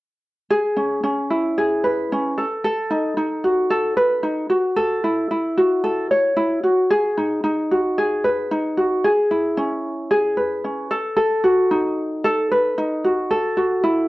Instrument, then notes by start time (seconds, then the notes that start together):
ukulele
0.50 G#4
0.76 C#4
1.04 C#4
1.31 E4
1.58 G#4
1.84 B4
2.12 C#4
2.38 A4
2.64 A4
2.91 D#4
3.17 D#4
3.44 F#4
3.71 A4
3.97 B4
4.23 D#4
4.50 F#4
4.76 A4
5.04 E4
5.31 E4
5.58 F#4
5.84 A4
6.11 C#5
6.36 E4
6.63 F#4
6.90 G#4
7.17 D#4
7.44 D#4
7.71 F#4
7.98 G#4
8.24 B4
8.51 D#4
8.77 F#4
9.04 G#4
9.31 E4
9.57 C#4
10.11 G#4
10.37 B4
10.64 C#4
10.91 A4
11.17 A4
11.44 F#4
11.71 D#4
12.24 A4
12.52 B4
12.78 D#4
13.05 F#4
13.31 A4
13.57 F#4
13.84 E4